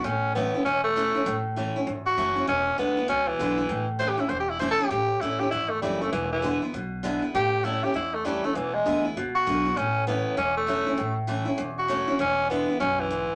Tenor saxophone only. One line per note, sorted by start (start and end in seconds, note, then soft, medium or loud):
0.05 0.34 C#4 medium
0.35 0.64 B3 loud
0.65 0.83 C#4 loud
0.84 1.43 A3 loud
2.06 2.47 F#4 loud
2.48 2.78 C#4 loud
2.79 3.08 B3 loud
3.09 3.29 C#4 loud
3.28 3.87 E3 loud
3.99 4.11 C5 loud
4.09 4.21 G4 medium
4.20 4.31 E4 medium
4.29 4.39 C5 loud
4.40 4.51 G4 medium
4.50 4.59 E4 medium
4.60 4.70 C5 medium
4.71 4.91 A4 loud
4.91 5.22 G4 loud
5.21 5.41 E4 medium
5.39 5.50 G4 medium
5.51 5.71 E4 loud
5.70 5.81 A3 medium
5.81 6.03 G3 medium
6.01 6.12 A3 medium
6.12 6.31 E3 medium
6.32 6.61 E3 loud
7.35 7.66 G4 loud
7.64 7.85 E4 loud
7.84 7.95 G4 medium
7.95 8.16 E4 medium
8.14 8.27 A3 medium
8.25 8.46 G3 medium
8.44 8.57 A3 medium
8.55 8.76 E3 loud
8.74 9.04 G#3 loud
9.35 9.79 F#4 loud
9.77 10.06 C#4 loud
10.07 10.37 B3 medium
10.38 10.56 C#4 loud
10.57 11.16 A3 loud
11.78 12.18 F#4 medium
12.20 12.49 C#4 loud
12.50 12.79 B3 loud
12.80 13.01 C#4 loud
13.00 13.35 E3 loud